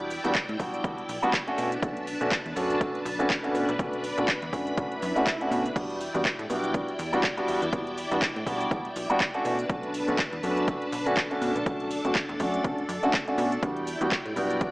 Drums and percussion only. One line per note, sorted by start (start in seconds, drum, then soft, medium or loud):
0.10 open hi-hat loud
0.10 cabasa medium
0.25 closed hi-hat soft
0.25 cabasa soft
0.35 kick loud
0.35 clap loud
0.35 closed hi-hat medium
0.35 cabasa soft
0.49 closed hi-hat soft
0.60 kick medium
0.60 open hi-hat medium
0.60 cabasa medium
0.74 closed hi-hat soft
0.74 cabasa soft
0.84 kick loud
0.84 closed hi-hat loud
0.84 cabasa soft
0.98 closed hi-hat soft
1.09 open hi-hat loud
1.09 cabasa medium
1.23 closed hi-hat soft
1.23 cabasa soft
1.33 kick loud
1.33 clap loud
1.33 closed hi-hat medium
1.33 cabasa soft
1.48 closed hi-hat soft
1.58 open hi-hat medium
1.58 cabasa medium
1.72 closed hi-hat soft
1.72 cabasa soft
1.82 kick loud
1.82 closed hi-hat loud
1.82 cabasa soft
1.97 closed hi-hat soft
2.07 open hi-hat loud
2.07 cabasa medium
2.21 closed hi-hat soft
2.21 cabasa soft
2.32 kick loud
2.32 clap loud
2.32 closed hi-hat loud
2.32 cabasa soft
2.46 closed hi-hat soft
2.56 open hi-hat medium
2.56 cabasa medium
2.70 closed hi-hat soft
2.70 cabasa soft
2.81 kick loud
2.81 closed hi-hat loud
2.81 cabasa soft
2.95 closed hi-hat soft
3.06 open hi-hat loud
3.06 cabasa medium
3.20 closed hi-hat soft
3.20 cabasa soft
3.30 kick loud
3.30 clap loud
3.30 closed hi-hat loud
3.30 cabasa soft
3.44 closed hi-hat soft
3.55 open hi-hat medium
3.55 cabasa medium
3.69 closed hi-hat soft
3.69 cabasa soft
3.79 kick loud
3.79 closed hi-hat loud
3.79 cabasa soft
3.93 closed hi-hat soft
4.04 open hi-hat loud
4.04 cabasa medium
4.18 closed hi-hat soft
4.18 cabasa soft
4.28 kick loud
4.28 clap loud
4.28 closed hi-hat loud
4.28 cabasa soft
4.42 closed hi-hat soft
4.53 kick medium
4.53 open hi-hat medium
4.53 cabasa medium
4.67 closed hi-hat soft
4.67 cabasa soft
4.78 kick loud
4.78 closed hi-hat loud
4.78 cabasa soft
4.92 closed hi-hat soft
5.02 open hi-hat loud
5.02 cabasa medium
5.16 closed hi-hat soft
5.16 cabasa soft
5.27 kick loud
5.27 clap loud
5.27 closed hi-hat loud
5.41 closed hi-hat soft
5.52 open hi-hat medium
5.52 cabasa medium
5.66 closed hi-hat soft
5.66 cabasa soft
5.76 kick loud
5.76 closed hi-hat loud
5.76 crash medium
5.76 cabasa soft
5.90 closed hi-hat soft
6.01 open hi-hat loud
6.01 cabasa medium
6.15 closed hi-hat soft
6.15 cabasa soft
6.25 kick loud
6.25 clap loud
6.25 closed hi-hat loud
6.25 cabasa soft
6.39 closed hi-hat soft
6.50 open hi-hat medium
6.50 cabasa medium
6.64 closed hi-hat soft
6.64 cabasa soft
6.74 kick loud
6.74 closed hi-hat loud
6.74 cabasa soft
6.88 closed hi-hat soft
6.99 open hi-hat loud
6.99 cabasa medium
7.13 closed hi-hat soft
7.13 cabasa soft
7.23 kick loud
7.23 clap loud
7.23 closed hi-hat medium
7.23 cabasa soft
7.38 closed hi-hat soft
7.48 open hi-hat medium
7.48 cabasa medium
7.62 closed hi-hat soft
7.62 cabasa soft
7.73 kick loud
7.73 closed hi-hat loud
7.73 cabasa soft
7.87 closed hi-hat soft
7.98 open hi-hat loud
7.98 cabasa medium
8.11 closed hi-hat soft
8.11 cabasa soft
8.22 kick loud
8.22 clap loud
8.22 closed hi-hat loud
8.36 closed hi-hat soft
8.47 kick medium
8.47 open hi-hat medium
8.47 cabasa medium
8.61 closed hi-hat soft
8.61 cabasa soft
8.71 kick loud
8.71 closed hi-hat medium
8.71 cabasa soft
8.85 closed hi-hat soft
8.96 open hi-hat loud
8.96 cabasa medium
9.10 closed hi-hat soft
9.10 cabasa soft
9.20 kick loud
9.20 clap loud
9.20 closed hi-hat loud
9.20 cabasa soft
9.34 closed hi-hat soft
9.45 open hi-hat loud
9.45 cabasa medium
9.59 closed hi-hat soft
9.59 cabasa soft
9.70 kick loud
9.70 closed hi-hat medium
9.70 cabasa soft
9.83 closed hi-hat soft
9.94 open hi-hat loud
9.94 cabasa medium
10.08 closed hi-hat soft
10.08 cabasa soft
10.19 kick loud
10.19 clap loud
10.19 closed hi-hat medium
10.19 cabasa soft
10.33 closed hi-hat soft
10.43 open hi-hat medium
10.43 cabasa medium
10.57 closed hi-hat soft
10.57 cabasa soft
10.68 kick loud
10.68 closed hi-hat loud
10.68 cabasa soft
10.82 closed hi-hat soft
10.92 open hi-hat loud
10.92 cabasa medium
11.06 closed hi-hat soft
11.06 cabasa soft
11.17 kick loud
11.17 clap loud
11.17 closed hi-hat medium
11.17 cabasa soft
11.31 closed hi-hat soft
11.42 open hi-hat loud
11.42 cabasa medium
11.56 closed hi-hat soft
11.56 cabasa soft
11.66 kick loud
11.66 closed hi-hat medium
11.66 cabasa soft
11.80 closed hi-hat soft
11.91 open hi-hat loud
11.91 cabasa medium
12.05 closed hi-hat soft
12.05 cabasa soft
12.15 kick loud
12.15 clap loud
12.15 closed hi-hat medium
12.15 cabasa soft
12.29 closed hi-hat soft
12.40 kick medium
12.40 open hi-hat loud
12.40 cabasa medium
12.54 closed hi-hat soft
12.54 cabasa soft
12.64 kick loud
12.64 closed hi-hat medium
12.64 cabasa soft
12.78 closed hi-hat soft
12.89 open hi-hat loud
12.89 cabasa medium
13.03 closed hi-hat soft
13.03 cabasa soft
13.14 kick loud
13.14 clap loud
13.14 closed hi-hat medium
13.28 closed hi-hat soft
13.38 open hi-hat loud
13.38 cabasa medium
13.52 closed hi-hat soft
13.52 cabasa soft
13.63 kick loud
13.63 closed hi-hat medium
13.63 cabasa soft
13.77 closed hi-hat soft
13.87 open hi-hat loud
13.87 cabasa medium
14.01 closed hi-hat soft
14.01 cabasa soft
14.12 kick loud
14.12 clap loud
14.12 closed hi-hat medium
14.12 cabasa soft
14.26 closed hi-hat soft
14.36 open hi-hat medium
14.36 cabasa medium
14.50 closed hi-hat soft
14.50 cabasa soft
14.61 kick loud
14.61 closed hi-hat medium
14.61 cabasa soft